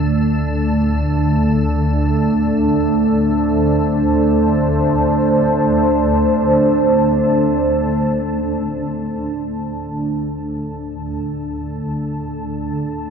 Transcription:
0, 0, Header, 1, 3, 480
1, 0, Start_track
1, 0, Tempo, 500000
1, 12577, End_track
2, 0, Start_track
2, 0, Title_t, "Ambient pad"
2, 0, Program_c, 0, 92
2, 0, Note_on_c, 0, 57, 90
2, 0, Note_on_c, 0, 62, 76
2, 0, Note_on_c, 0, 74, 86
2, 0, Note_on_c, 0, 81, 93
2, 1737, Note_on_c, 0, 72, 94
2, 2037, Note_off_c, 0, 74, 0
2, 9152, Note_on_c, 0, 74, 68
2, 11260, Note_off_c, 0, 72, 0
2, 12577, Note_off_c, 0, 57, 0
2, 12577, Note_off_c, 0, 62, 0
2, 12577, Note_off_c, 0, 74, 0
2, 12577, Note_off_c, 0, 81, 0
2, 12577, End_track
3, 0, Start_track
3, 0, Title_t, "Synth drone"
3, 0, Program_c, 1, 95
3, 0, Note_on_c, 1, 38, 68
3, 0, Note_on_c, 1, 50, 64
3, 7898, Note_off_c, 1, 50, 0
3, 7906, Note_off_c, 1, 38, 0
3, 7910, Note_on_c, 1, 50, 62
3, 7917, Note_on_c, 1, 38, 63
3, 12577, Note_off_c, 1, 38, 0
3, 12577, Note_off_c, 1, 50, 0
3, 12577, End_track
0, 0, End_of_file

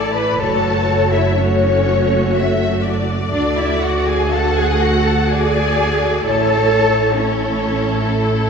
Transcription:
0, 0, Header, 1, 6, 480
1, 0, Start_track
1, 0, Tempo, 978793
1, 195, Time_signature, 3, 2, 24, 8
1, 2596, Tempo, 930233
1, 4250, End_track
2, 0, Start_track
2, 0, Title_t, "Violin section"
2, 0, Program_c, 0, 48
2, 0, Note_on_c, 0, 81, 96
2, 73, Note_off_c, 0, 81, 0
2, 73, Note_on_c, 0, 83, 93
2, 190, Note_on_c, 0, 81, 104
2, 193, Note_off_c, 0, 83, 0
2, 547, Note_off_c, 0, 81, 0
2, 558, Note_on_c, 0, 76, 92
2, 672, Note_on_c, 0, 73, 94
2, 675, Note_off_c, 0, 76, 0
2, 1388, Note_off_c, 0, 73, 0
2, 1631, Note_on_c, 0, 74, 92
2, 1745, Note_off_c, 0, 74, 0
2, 1748, Note_on_c, 0, 76, 91
2, 1872, Note_on_c, 0, 78, 87
2, 1874, Note_off_c, 0, 76, 0
2, 1995, Note_on_c, 0, 80, 97
2, 1998, Note_off_c, 0, 78, 0
2, 2119, Note_off_c, 0, 80, 0
2, 2123, Note_on_c, 0, 81, 98
2, 2242, Note_off_c, 0, 81, 0
2, 2243, Note_on_c, 0, 80, 92
2, 2360, Note_off_c, 0, 80, 0
2, 2367, Note_on_c, 0, 78, 100
2, 2481, Note_off_c, 0, 78, 0
2, 2483, Note_on_c, 0, 81, 90
2, 2596, Note_on_c, 0, 80, 100
2, 2598, Note_off_c, 0, 81, 0
2, 3088, Note_off_c, 0, 80, 0
2, 3090, Note_on_c, 0, 81, 107
2, 3551, Note_off_c, 0, 81, 0
2, 3560, Note_on_c, 0, 73, 94
2, 4250, Note_off_c, 0, 73, 0
2, 4250, End_track
3, 0, Start_track
3, 0, Title_t, "Violin section"
3, 0, Program_c, 1, 48
3, 0, Note_on_c, 1, 74, 89
3, 197, Note_off_c, 1, 74, 0
3, 197, Note_on_c, 1, 73, 89
3, 668, Note_off_c, 1, 73, 0
3, 681, Note_on_c, 1, 73, 93
3, 1145, Note_off_c, 1, 73, 0
3, 1152, Note_on_c, 1, 76, 93
3, 1390, Note_off_c, 1, 76, 0
3, 1396, Note_on_c, 1, 74, 86
3, 2124, Note_off_c, 1, 74, 0
3, 2126, Note_on_c, 1, 78, 89
3, 2593, Note_on_c, 1, 74, 94
3, 2597, Note_off_c, 1, 78, 0
3, 3086, Note_off_c, 1, 74, 0
3, 3087, Note_on_c, 1, 73, 93
3, 3549, Note_off_c, 1, 73, 0
3, 3559, Note_on_c, 1, 69, 91
3, 4250, Note_off_c, 1, 69, 0
3, 4250, End_track
4, 0, Start_track
4, 0, Title_t, "Cello section"
4, 0, Program_c, 2, 48
4, 0, Note_on_c, 2, 69, 104
4, 74, Note_off_c, 2, 69, 0
4, 76, Note_on_c, 2, 71, 106
4, 192, Note_off_c, 2, 71, 0
4, 196, Note_on_c, 2, 69, 109
4, 554, Note_on_c, 2, 64, 99
4, 557, Note_off_c, 2, 69, 0
4, 676, Note_off_c, 2, 64, 0
4, 676, Note_on_c, 2, 61, 106
4, 1390, Note_off_c, 2, 61, 0
4, 1630, Note_on_c, 2, 62, 108
4, 1744, Note_off_c, 2, 62, 0
4, 1752, Note_on_c, 2, 64, 96
4, 1877, Note_off_c, 2, 64, 0
4, 1879, Note_on_c, 2, 66, 100
4, 2001, Note_off_c, 2, 66, 0
4, 2002, Note_on_c, 2, 68, 107
4, 2122, Note_off_c, 2, 68, 0
4, 2122, Note_on_c, 2, 69, 112
4, 2241, Note_on_c, 2, 68, 111
4, 2242, Note_off_c, 2, 69, 0
4, 2359, Note_off_c, 2, 68, 0
4, 2360, Note_on_c, 2, 66, 109
4, 2475, Note_on_c, 2, 69, 114
4, 2477, Note_off_c, 2, 66, 0
4, 2590, Note_on_c, 2, 68, 112
4, 2594, Note_off_c, 2, 69, 0
4, 3084, Note_off_c, 2, 68, 0
4, 3084, Note_on_c, 2, 69, 123
4, 3548, Note_off_c, 2, 69, 0
4, 3557, Note_on_c, 2, 61, 107
4, 4250, Note_off_c, 2, 61, 0
4, 4250, End_track
5, 0, Start_track
5, 0, Title_t, "Viola section"
5, 0, Program_c, 3, 48
5, 0, Note_on_c, 3, 57, 79
5, 0, Note_on_c, 3, 64, 85
5, 176, Note_off_c, 3, 57, 0
5, 176, Note_off_c, 3, 64, 0
5, 197, Note_on_c, 3, 57, 79
5, 197, Note_on_c, 3, 66, 80
5, 668, Note_off_c, 3, 57, 0
5, 669, Note_off_c, 3, 66, 0
5, 675, Note_on_c, 3, 57, 83
5, 676, Note_on_c, 3, 66, 84
5, 1612, Note_off_c, 3, 57, 0
5, 1612, Note_off_c, 3, 66, 0
5, 1634, Note_on_c, 3, 57, 81
5, 1634, Note_on_c, 3, 66, 82
5, 3067, Note_off_c, 3, 57, 0
5, 3067, Note_off_c, 3, 66, 0
5, 3087, Note_on_c, 3, 57, 80
5, 3087, Note_on_c, 3, 64, 81
5, 3549, Note_off_c, 3, 64, 0
5, 3550, Note_off_c, 3, 57, 0
5, 3562, Note_on_c, 3, 64, 83
5, 3563, Note_on_c, 3, 57, 82
5, 4250, Note_off_c, 3, 57, 0
5, 4250, Note_off_c, 3, 64, 0
5, 4250, End_track
6, 0, Start_track
6, 0, Title_t, "Double bass section"
6, 0, Program_c, 4, 48
6, 0, Note_on_c, 4, 33, 97
6, 172, Note_off_c, 4, 33, 0
6, 192, Note_on_c, 4, 30, 92
6, 1630, Note_on_c, 4, 38, 88
6, 1631, Note_off_c, 4, 30, 0
6, 3083, Note_on_c, 4, 33, 94
6, 3086, Note_off_c, 4, 38, 0
6, 4250, Note_off_c, 4, 33, 0
6, 4250, End_track
0, 0, End_of_file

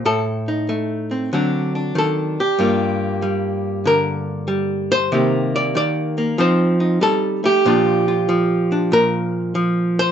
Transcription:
0, 0, Header, 1, 2, 480
1, 0, Start_track
1, 0, Key_signature, -2, "major"
1, 0, Tempo, 632911
1, 39, Time_signature, 4, 2, 24, 8
1, 7673, End_track
2, 0, Start_track
2, 0, Title_t, "Hollow-body jazz guitar"
2, 0, Program_c, 0, 26
2, 41, Note_on_c, 0, 45, 80
2, 45, Note_on_c, 0, 69, 90
2, 365, Note_on_c, 0, 63, 48
2, 523, Note_on_c, 0, 57, 59
2, 843, Note_on_c, 0, 60, 49
2, 982, Note_off_c, 0, 45, 0
2, 982, Note_off_c, 0, 57, 0
2, 983, Note_off_c, 0, 60, 0
2, 984, Note_off_c, 0, 63, 0
2, 1007, Note_on_c, 0, 50, 72
2, 1013, Note_on_c, 0, 54, 50
2, 1016, Note_on_c, 0, 60, 48
2, 1023, Note_on_c, 0, 62, 47
2, 1319, Note_off_c, 0, 62, 0
2, 1329, Note_on_c, 0, 62, 40
2, 1478, Note_off_c, 0, 50, 0
2, 1481, Note_on_c, 0, 51, 65
2, 1482, Note_off_c, 0, 69, 0
2, 1505, Note_on_c, 0, 69, 85
2, 1799, Note_off_c, 0, 51, 0
2, 1806, Note_off_c, 0, 54, 0
2, 1812, Note_off_c, 0, 69, 0
2, 1822, Note_on_c, 0, 67, 79
2, 1950, Note_off_c, 0, 60, 0
2, 1961, Note_on_c, 0, 43, 75
2, 1965, Note_off_c, 0, 62, 0
2, 1969, Note_on_c, 0, 55, 49
2, 1973, Note_on_c, 0, 58, 49
2, 1979, Note_on_c, 0, 65, 42
2, 2442, Note_off_c, 0, 55, 0
2, 2445, Note_on_c, 0, 55, 53
2, 2923, Note_on_c, 0, 50, 64
2, 2932, Note_off_c, 0, 67, 0
2, 2936, Note_on_c, 0, 70, 89
2, 3392, Note_off_c, 0, 55, 0
2, 3395, Note_on_c, 0, 55, 63
2, 3726, Note_off_c, 0, 70, 0
2, 3729, Note_on_c, 0, 72, 113
2, 3863, Note_off_c, 0, 50, 0
2, 3869, Note_off_c, 0, 65, 0
2, 3879, Note_off_c, 0, 43, 0
2, 3882, Note_on_c, 0, 48, 78
2, 3885, Note_off_c, 0, 58, 0
2, 3887, Note_on_c, 0, 51, 50
2, 3895, Note_on_c, 0, 58, 52
2, 3899, Note_on_c, 0, 67, 50
2, 4204, Note_off_c, 0, 72, 0
2, 4214, Note_on_c, 0, 74, 88
2, 4352, Note_off_c, 0, 51, 0
2, 4361, Note_off_c, 0, 48, 0
2, 4361, Note_on_c, 0, 51, 57
2, 4365, Note_off_c, 0, 74, 0
2, 4374, Note_on_c, 0, 74, 107
2, 4676, Note_off_c, 0, 58, 0
2, 4685, Note_on_c, 0, 58, 51
2, 4822, Note_off_c, 0, 51, 0
2, 4838, Note_off_c, 0, 55, 0
2, 4841, Note_on_c, 0, 53, 79
2, 4844, Note_off_c, 0, 58, 0
2, 4847, Note_off_c, 0, 74, 0
2, 4849, Note_on_c, 0, 60, 52
2, 4850, Note_off_c, 0, 67, 0
2, 4853, Note_on_c, 0, 63, 52
2, 4858, Note_on_c, 0, 72, 78
2, 5149, Note_off_c, 0, 63, 0
2, 5158, Note_on_c, 0, 63, 45
2, 5315, Note_off_c, 0, 53, 0
2, 5319, Note_on_c, 0, 55, 66
2, 5325, Note_off_c, 0, 72, 0
2, 5328, Note_on_c, 0, 69, 99
2, 5638, Note_off_c, 0, 55, 0
2, 5641, Note_on_c, 0, 57, 60
2, 5643, Note_off_c, 0, 69, 0
2, 5654, Note_on_c, 0, 67, 87
2, 5780, Note_off_c, 0, 63, 0
2, 5801, Note_off_c, 0, 57, 0
2, 5805, Note_on_c, 0, 46, 81
2, 5812, Note_on_c, 0, 53, 52
2, 5813, Note_off_c, 0, 60, 0
2, 5816, Note_on_c, 0, 62, 55
2, 5822, Note_on_c, 0, 65, 51
2, 6125, Note_off_c, 0, 65, 0
2, 6128, Note_on_c, 0, 65, 50
2, 6282, Note_off_c, 0, 53, 0
2, 6285, Note_on_c, 0, 53, 62
2, 6609, Note_off_c, 0, 62, 0
2, 6612, Note_on_c, 0, 62, 53
2, 6761, Note_off_c, 0, 46, 0
2, 6764, Note_on_c, 0, 46, 67
2, 6766, Note_off_c, 0, 67, 0
2, 6774, Note_on_c, 0, 70, 98
2, 7240, Note_off_c, 0, 53, 0
2, 7243, Note_on_c, 0, 53, 70
2, 7564, Note_off_c, 0, 70, 0
2, 7578, Note_on_c, 0, 72, 114
2, 7673, Note_off_c, 0, 46, 0
2, 7673, Note_off_c, 0, 53, 0
2, 7673, Note_off_c, 0, 62, 0
2, 7673, Note_off_c, 0, 65, 0
2, 7673, Note_off_c, 0, 72, 0
2, 7673, End_track
0, 0, End_of_file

